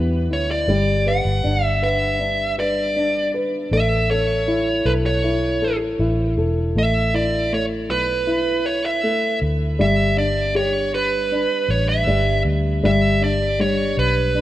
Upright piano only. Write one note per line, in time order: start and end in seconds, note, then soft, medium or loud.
0.00 0.65 E3 medium
0.00 0.66 B3 soft
0.00 0.30 E4 soft
0.00 0.70 G4 soft
0.30 0.67 E4 soft
0.68 3.68 G3 medium
1.06 1.81 B4 soft
1.44 2.18 D4 medium
1.82 2.57 B4 soft
2.19 2.95 D4 soft
2.58 3.33 B4 soft
2.96 3.70 D4 soft
3.34 3.71 B4 soft
3.72 6.72 A3 medium
4.10 4.84 A4 soft
4.48 5.22 E4 soft
4.86 5.61 A4 soft
5.24 5.98 E4 soft
5.62 6.36 A4 soft
6.00 6.73 E4 soft
6.38 6.75 A4 soft
6.76 7.50 A3 medium
7.14 8.25 E4 soft
7.52 9.00 A3 soft
8.27 9.75 E4 soft
9.03 9.77 A3 medium
9.79 12.06 G3 medium
10.17 11.30 D4 soft
10.55 12.03 G4 soft
11.32 12.80 D4 soft
12.07 12.81 G3 soft
12.83 13.58 G3 medium
13.21 14.33 D4 soft
13.59 14.41 G3 soft
14.35 14.41 D4 soft